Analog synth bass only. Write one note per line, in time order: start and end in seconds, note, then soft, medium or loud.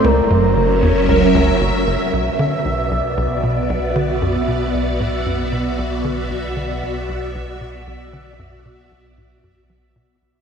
0.04 0.21 C#2 loud
0.30 0.55 F#2 medium
0.56 0.81 F#1 medium
0.82 0.92 E2 medium
1.08 1.25 C#2 medium
1.34 1.51 C#2 loud
1.61 1.71 F#1 medium
1.87 1.97 F#1 medium
2.13 2.30 B1 medium
2.39 2.56 D3 medium
2.65 2.90 B1 medium
2.91 3.01 B1 medium
3.17 3.27 B1 loud
3.43 3.60 B2 medium
3.69 3.79 B1 loud
3.96 4.12 D3 medium
4.22 4.38 F#2 loud
4.48 4.73 B2 medium
4.74 4.99 B1 medium
5.00 5.10 A2 medium
5.26 5.43 F#2 medium
5.52 5.69 B2 medium
5.78 5.88 B1 loud
6.04 6.21 D3 medium
6.30 6.47 B1 medium
6.56 6.73 D3 medium
6.82 7.07 B1 medium
7.09 7.19 B1 medium
7.35 7.45 B1 loud
7.61 7.78 B2 medium
7.87 7.97 B1 medium
8.13 8.30 D3 medium
8.39 8.56 F#2 medium
8.65 8.90 B2 medium
8.91 9.16 B1 medium
9.17 9.27 A2 medium
9.44 9.60 F#2 medium
9.70 9.80 F#3 medium
9.96 10.06 B2 medium
10.22 10.32 B1 medium